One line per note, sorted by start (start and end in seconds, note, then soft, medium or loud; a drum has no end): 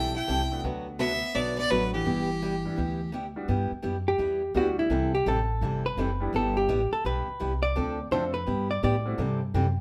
0.00 0.23 B1 medium
0.00 0.15 E3 soft
0.00 0.15 G3 medium
0.00 0.15 C4 medium
0.00 0.15 E4 medium
0.00 0.15 A4 medium
0.00 0.15 G5 loud
0.16 0.61 E4 medium
0.16 0.61 G5 medium
0.27 0.59 C2 medium
0.27 0.40 E3 medium
0.27 0.40 G3 medium
0.27 0.40 C4 medium
0.27 0.40 E4 medium
0.27 0.40 A4 medium
0.51 0.97 A3 medium
0.51 0.98 B3 medium
0.51 0.98 D4 soft
0.51 0.98 F#4 medium
0.64 1.21 D2 medium
0.64 0.86 D3 medium
0.64 0.86 F#3 medium
0.64 0.86 B3 medium
0.64 0.86 F#4 medium
0.64 0.87 B4 medium
0.99 1.11 D3 medium
0.99 1.11 F#3 medium
0.99 1.11 B3 medium
0.99 1.34 B3 medium
0.99 1.11 F#4 medium
0.99 1.11 B4 medium
0.99 1.37 E5 loud
1.35 1.65 B1 medium
1.35 1.57 D3 medium
1.35 1.57 F#3 medium
1.35 1.58 B3 medium
1.35 1.57 B3 medium
1.35 1.57 F#4 medium
1.35 1.58 B4 medium
1.35 1.57 D5 medium
1.58 1.70 B3 medium
1.58 1.72 D5 loud
1.70 2.01 A1 medium
1.70 1.82 D3 medium
1.70 1.82 F#3 medium
1.70 1.94 F#3 medium
1.70 2.06 A3 medium
1.70 2.06 B3 medium
1.70 1.83 B3 medium
1.70 2.07 D4 medium
1.70 2.07 F#4 medium
1.70 1.83 F#4 medium
1.70 1.93 B4 medium
1.70 1.83 B4 medium
1.94 3.10 E3 medium
1.94 3.09 G4 medium
2.05 2.63 G1 medium
2.05 2.28 G3 medium
2.05 2.28 B3 medium
2.05 2.28 E4 medium
2.05 2.28 G4 medium
2.42 2.54 G3 medium
2.42 2.54 B3 medium
2.42 2.54 E4 medium
2.42 2.54 G4 medium
2.65 2.77 G3 medium
2.65 2.77 B3 soft
2.65 2.77 D4 soft
2.65 2.77 E4 medium
2.76 3.35 D2 medium
2.76 2.99 G3 medium
2.76 2.99 B3 soft
2.76 2.99 E4 medium
2.76 3.00 G4 medium
3.12 3.24 G3 medium
3.12 3.25 B3 medium
3.12 3.25 E4 medium
3.12 3.25 G4 medium
3.36 3.47 G3 medium
3.36 3.48 B3 medium
3.36 3.48 D4 medium
3.36 3.48 F#4 medium
3.48 3.70 G2 medium
3.48 3.70 G3 medium
3.48 3.71 B3 medium
3.48 3.71 E4 medium
3.48 3.71 G4 medium
3.72 muted upright bass stroke soft
3.82 4.18 F#2 medium
3.82 3.95 G3 medium
3.82 3.95 B3 medium
3.82 3.95 E4 medium
3.82 3.96 G4 medium
4.08 4.52 G4 medium
4.18 4.54 E2 medium
4.18 4.41 G3 medium
4.18 4.41 B3 medium
4.18 4.41 E4 medium
4.18 4.42 G4 medium
4.54 4.89 D2 medium
4.54 4.67 G3 medium
4.54 4.91 G3 medium
4.54 4.91 B3 medium
4.54 4.67 B3 medium
4.54 4.91 D4 medium
4.54 4.67 E4 medium
4.54 4.91 E4 medium
4.54 4.79 F#4 medium
4.54 4.91 G4 medium
4.54 4.67 G4 medium
4.79 5.12 E4 medium
4.90 5.25 C2 medium
4.90 5.12 C3 medium
4.90 5.12 E3 medium
4.90 5.13 G3 medium
4.90 5.13 C4 medium
4.90 5.13 E4 medium
4.90 5.13 A4 medium
5.15 5.26 G4 medium
5.26 5.61 A1 medium
5.26 5.38 C3 medium
5.26 5.38 E3 medium
5.26 5.38 G3 medium
5.26 5.38 C4 medium
5.26 5.39 E4 medium
5.26 5.39 A4 medium
5.26 5.82 A4 medium
5.61 5.96 G1 medium
5.61 5.84 C3 medium
5.61 5.84 E3 medium
5.61 5.84 G3 medium
5.61 5.84 C4 medium
5.61 5.85 E4 medium
5.61 5.85 A4 medium
5.86 6.30 B4 medium
5.97 6.32 F#1 medium
5.97 6.09 C3 medium
5.97 6.09 E3 medium
5.97 6.10 G3 medium
5.97 6.10 C4 medium
5.97 6.10 E4 medium
5.97 6.10 A4 medium
6.20 6.32 G3 medium
6.20 6.32 B3 medium
6.20 6.32 D4 medium
6.20 6.32 E4 medium
6.20 6.32 G4 medium
6.33 6.67 G1 medium
6.33 6.55 G3 medium
6.33 6.55 B3 medium
6.33 6.56 E4 medium
6.33 6.56 G4 medium
6.33 6.57 A4 medium
6.57 6.90 G4 medium
6.68 6.90 A1 medium
6.68 6.80 G3 medium
6.68 6.80 B3 medium
6.68 6.81 E4 medium
6.68 6.81 G4 medium
6.91 7.04 A4 medium
6.91 muted upright bass stroke soft
7.05 7.26 B1 medium
7.05 7.27 G3 soft
7.05 7.27 B3 medium
7.05 7.27 E4 medium
7.05 7.27 G4 medium
7.05 7.60 B4 medium
7.28 muted upright bass stroke soft
7.40 7.75 C2 medium
7.40 7.51 G3 medium
7.40 7.52 B3 medium
7.40 7.52 E4 medium
7.40 7.52 G4 medium
7.63 8.07 D5 medium
7.76 8.11 D2 medium
7.76 7.97 D3 medium
7.76 7.98 F3 medium
7.76 7.98 C4 medium
7.76 7.98 D4 medium
7.76 7.98 A4 medium
8.11 8.46 F2 medium
8.11 8.23 D3 medium
8.11 8.23 F3 medium
8.11 8.32 A3 medium
8.11 8.32 C4 medium
8.11 8.23 C4 medium
8.11 8.32 D4 medium
8.11 8.23 D4 medium
8.11 8.32 F4 medium
8.11 8.32 A4 medium
8.11 8.23 A4 medium
8.11 8.33 C5 medium
8.34 8.67 B4 medium
8.46 8.82 G2 medium
8.46 8.69 G3 medium
8.46 8.69 B3 medium
8.46 8.69 E4 medium
8.46 8.69 G4 medium
8.71 8.82 D5 medium
8.83 9.17 A2 medium
8.83 8.94 G3 medium
8.83 8.94 B3 medium
8.83 8.94 E4 medium
8.83 8.94 G4 medium
8.83 9.38 D5 medium
9.05 9.17 G3 medium
9.05 9.17 A3 medium
9.05 9.17 C4 medium
9.05 9.17 E4 medium
9.05 9.17 F#4 medium
9.18 9.53 G2 medium
9.18 9.40 C3 medium
9.18 9.40 E3 medium
9.18 9.40 G3 medium
9.18 9.40 C4 medium
9.18 9.40 E4 medium
9.18 9.40 A4 medium
9.54 9.81 F#2 medium
9.54 9.66 C3 medium
9.54 9.66 E3 medium
9.54 9.66 G3 medium
9.54 9.66 C4 medium
9.54 9.66 E4 medium
9.54 9.66 A4 medium